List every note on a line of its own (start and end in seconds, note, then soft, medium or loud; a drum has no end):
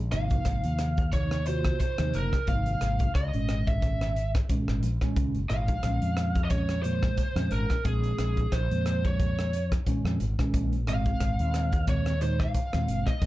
0.00 0.13 A#1 medium
0.12 0.39 G#1 medium
0.12 0.95 C3 medium
0.12 0.95 F3 medium
0.12 0.95 A#3 medium
0.12 0.95 D#4 medium
0.12 1.09 F5 medium
0.12 cross-stick medium
0.12 closed hi-hat medium
0.30 kick medium
0.30 closed hi-hat soft
0.45 0.60 G#1 medium
0.45 kick medium
0.45 cross-stick medium
0.45 closed hi-hat medium
0.64 1.71 D#2 medium
0.64 closed hi-hat soft
0.79 cross-stick medium
0.79 closed hi-hat medium
0.97 kick medium
0.97 closed hi-hat soft
1.12 1.38 C3 medium
1.12 1.38 F3 medium
1.12 1.39 A#3 medium
1.12 1.39 D#4 medium
1.12 1.47 C#5 medium
1.12 kick medium
1.12 closed hi-hat medium
1.31 cross-stick medium
1.31 closed hi-hat soft
1.46 1.83 C3 medium
1.46 1.83 A#3 medium
1.46 1.83 F4 medium
1.46 1.84 F#4 medium
1.46 1.79 C5 medium
1.46 closed hi-hat medium
1.65 kick medium
1.65 cross-stick medium
1.80 2.15 C5 medium
1.80 kick medium
1.80 closed hi-hat medium
1.98 2.11 D#2 medium
1.98 2.35 C3 medium
1.98 2.34 F3 medium
1.98 2.35 A#3 medium
1.98 2.35 D#4 medium
1.98 cross-stick medium
1.98 closed hi-hat soft
2.14 2.29 F#1 medium
2.14 2.46 A#4 medium
2.14 closed hi-hat medium
2.33 kick medium
2.33 cross-stick medium
2.33 closed hi-hat soft
2.47 2.74 G#1 medium
2.47 3.08 C3 medium
2.47 3.08 F3 medium
2.47 3.09 A#3 medium
2.47 3.09 D#4 medium
2.47 3.11 F5 medium
2.47 kick medium
2.47 closed hi-hat medium
2.66 closed hi-hat soft
2.81 3.08 G#1 medium
2.81 cross-stick medium
2.81 closed hi-hat soft
2.99 kick medium
2.99 closed hi-hat soft
3.15 3.30 C#2 medium
3.15 3.69 D#5 medium
3.15 kick medium
3.15 cross-stick medium
3.15 closed hi-hat medium
3.33 4.40 G#1 medium
3.33 4.15 A#2 medium
3.33 4.15 D#3 medium
3.33 4.15 G#3 medium
3.33 4.15 C#4 medium
3.33 closed hi-hat soft
3.49 cross-stick medium
3.49 closed hi-hat soft
3.67 4.30 E5 medium
3.67 kick medium
3.67 closed hi-hat soft
3.82 kick medium
3.82 closed hi-hat medium
4.01 cross-stick medium
4.01 closed hi-hat soft
4.16 closed hi-hat medium
4.35 kick medium
4.35 cross-stick medium
4.35 closed hi-hat soft
4.49 4.85 A#2 medium
4.49 4.85 D#3 medium
4.49 4.86 G#3 medium
4.49 4.86 C#4 medium
4.49 kick medium
4.49 closed hi-hat medium
4.68 4.80 G#1 medium
4.68 cross-stick medium
4.82 4.97 A#1 medium
4.82 closed hi-hat medium
5.01 5.37 A#2 medium
5.01 5.38 D#3 medium
5.01 5.38 G#3 medium
5.01 5.38 C#4 loud
5.01 kick medium
5.01 cross-stick medium
5.01 closed hi-hat soft
5.16 5.31 C#2 medium
5.16 kick loud
5.16 closed hi-hat medium
5.35 5.49 F#1 medium
5.35 closed hi-hat soft
5.50 5.67 G#1 medium
5.50 5.75 A#2 medium
5.50 5.75 D#3 medium
5.50 5.75 G#3 medium
5.50 5.76 D#4 medium
5.50 6.47 F5 medium
5.50 cross-stick medium
5.50 closed hi-hat soft
5.68 5.82 A#1 medium
5.68 kick medium
5.68 closed hi-hat soft
5.83 5.99 A#1 medium
5.83 6.33 A#2 medium
5.83 6.33 D#3 medium
5.83 6.34 G#3 medium
5.83 6.34 C#4 medium
5.83 kick medium
5.83 cross-stick medium
5.83 closed hi-hat medium
6.02 7.08 F2 medium
6.02 closed hi-hat soft
6.17 cross-stick medium
6.17 closed hi-hat medium
6.35 kick medium
6.35 closed hi-hat soft
6.45 6.50 D#5 medium
6.50 6.76 A#2 medium
6.50 6.76 D#3 medium
6.50 6.76 G#3 medium
6.50 6.76 C#4 medium
6.50 6.82 C#5 medium
6.50 kick loud
6.50 closed hi-hat medium
6.69 cross-stick medium
6.69 closed hi-hat soft
6.83 7.20 A#2 medium
6.83 7.20 D#3 medium
6.83 7.20 G#3 medium
6.83 7.21 A#3 medium
6.83 7.53 C5 medium
6.83 closed hi-hat medium
7.03 kick medium
7.03 cross-stick medium
7.17 kick medium
7.17 closed hi-hat medium
7.36 7.48 F2 medium
7.36 7.72 A#2 medium
7.36 7.72 D#3 medium
7.36 7.72 G#3 medium
7.36 7.73 C#4 medium
7.36 cross-stick medium
7.36 closed hi-hat soft
7.51 7.66 G#1 medium
7.51 7.85 A#4 medium
7.51 closed hi-hat medium
7.70 kick medium
7.70 cross-stick medium
7.70 closed hi-hat soft
7.84 8.12 A#1 medium
7.84 8.45 A#2 medium
7.84 8.45 D#3 medium
7.84 8.45 G#3 medium
7.84 8.45 C4 medium
7.84 8.55 G#4 medium
7.84 kick loud
7.84 closed hi-hat medium
8.04 closed hi-hat soft
8.18 8.45 A#1 medium
8.18 cross-stick medium
8.18 closed hi-hat medium
8.37 kick medium
8.37 closed hi-hat soft
8.52 8.67 A#1 medium
8.52 9.06 C5 medium
8.52 kick medium
8.52 cross-stick medium
8.52 closed hi-hat medium
8.70 9.77 F2 medium
8.70 9.52 A#2 medium
8.70 9.52 D#3 medium
8.70 9.52 G#3 medium
8.70 9.52 A#3 medium
8.70 closed hi-hat soft
8.86 cross-stick medium
8.86 closed hi-hat soft
9.05 9.68 C#5 medium
9.05 kick medium
9.05 closed hi-hat soft
9.20 kick medium
9.20 closed hi-hat medium
9.39 cross-stick medium
9.39 closed hi-hat soft
9.53 closed hi-hat medium
9.72 kick medium
9.72 cross-stick medium
9.72 closed hi-hat soft
9.86 10.22 A#2 medium
9.86 10.22 D#3 medium
9.86 10.22 G#3 medium
9.86 10.23 C#4 loud
9.86 kick medium
9.86 closed hi-hat medium
10.05 10.17 F2 medium
10.05 cross-stick medium
10.20 10.35 G#1 medium
10.20 closed hi-hat medium
10.39 10.74 A#2 medium
10.39 10.74 D#3 medium
10.39 10.74 G#3 medium
10.39 10.75 C#4 loud
10.39 kick medium
10.39 cross-stick medium
10.39 closed hi-hat soft
10.54 10.88 A#1 medium
10.54 kick medium
10.54 closed hi-hat medium
10.73 closed hi-hat soft
10.87 11.14 G#1 medium
10.87 11.69 A#2 medium
10.87 11.69 D#3 medium
10.87 11.69 G#3 medium
10.87 11.70 C4 medium
10.87 11.85 F5 loud
10.87 cross-stick medium
10.87 closed hi-hat medium
11.06 kick medium
11.06 closed hi-hat soft
11.20 11.35 G#1 medium
11.20 kick medium
11.20 cross-stick medium
11.20 closed hi-hat medium
11.39 12.45 D#2 medium
11.39 closed hi-hat soft
11.54 cross-stick medium
11.54 closed hi-hat medium
11.72 kick medium
11.72 closed hi-hat soft
11.87 12.12 A#2 medium
11.87 12.12 D#3 medium
11.87 12.12 G#3 medium
11.87 12.12 C4 medium
11.87 12.22 C#5 medium
11.87 kick medium
11.87 closed hi-hat medium
12.06 cross-stick medium
12.06 closed hi-hat soft
12.21 12.57 A#2 medium
12.21 12.57 D#3 medium
12.21 12.57 G#3 medium
12.21 12.57 D#4 medium
12.21 12.41 C5 medium
12.21 closed hi-hat medium
12.39 13.08 F5 loud
12.39 kick medium
12.39 cross-stick medium
12.55 kick medium
12.55 closed hi-hat medium
12.73 12.85 D#2 medium
12.73 13.09 A#2 medium
12.73 13.08 D#3 medium
12.73 13.09 G#3 medium
12.73 13.09 C4 medium
12.73 cross-stick medium
12.73 closed hi-hat soft
12.88 13.03 F#1 medium
12.88 closed hi-hat medium
13.06 13.26 D#5 medium
13.06 kick medium
13.06 cross-stick medium
13.06 closed hi-hat soft
13.22 13.26 G#1 medium
13.22 13.26 A#2 medium
13.22 13.26 D#3 medium
13.22 13.26 G#3 medium
13.22 13.26 C4 medium
13.22 kick loud
13.22 closed hi-hat medium